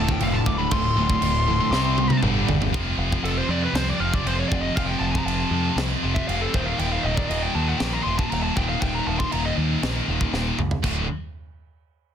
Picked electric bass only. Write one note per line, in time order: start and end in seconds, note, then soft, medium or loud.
0.00 0.15 D1 medium
0.21 0.40 F1 medium
0.46 0.65 D1 medium
0.72 0.91 D1 medium
0.95 1.15 D1 medium
1.21 1.60 D1 medium
1.71 2.09 C2 loud
2.23 2.42 G1 loud
2.49 2.74 G1 medium
2.74 2.91 F1 medium
2.98 3.16 F1 medium
3.23 3.41 F1 medium
3.49 3.67 F2 loud
3.73 3.91 C2 medium
4.00 4.18 F1 medium
4.25 4.43 F1 loud
4.51 4.69 F1 medium
4.77 4.94 F1 medium
5.01 5.19 F1 medium
5.25 5.43 F1 medium
5.51 5.69 F2 medium
5.76 5.94 C2 medium
6.03 6.21 F1 medium
6.29 6.46 F1 loud
6.54 6.72 D#1 medium
6.79 6.97 D#1 medium
7.04 7.22 D#1 medium
7.30 7.47 D#1 medium
7.55 7.73 D#2 medium
7.80 7.98 A#1 medium
8.06 8.24 D#1 medium
8.32 8.49 D#1 loud
8.57 8.74 D#1 medium
8.82 8.99 D#1 medium
9.07 9.25 D#1 medium
9.34 9.51 D#1 medium
9.58 9.75 D#2 medium
9.83 10.00 A#1 medium
10.08 10.26 D#1 medium
10.33 10.50 D#1 loud
10.59 10.76 C#2 medium
10.84 11.07 D1 medium